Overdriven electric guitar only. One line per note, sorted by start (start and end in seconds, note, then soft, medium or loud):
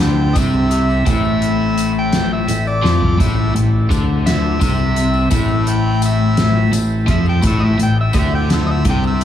0.00 0.35 D3 loud
0.35 1.05 C3 loud
1.06 2.47 A2 medium
2.48 2.77 A2 medium
2.83 3.18 F3 loud
3.19 3.53 A2 medium
3.55 3.83 A2 medium
3.90 4.60 D3 loud
4.60 5.30 C3 medium
5.31 6.71 A2 loud
6.72 7.01 A2 medium
7.07 7.42 F3 loud
7.42 7.77 A2 loud
7.78 8.07 A2 medium
8.14 8.84 D3 loud
8.85 9.24 C3 loud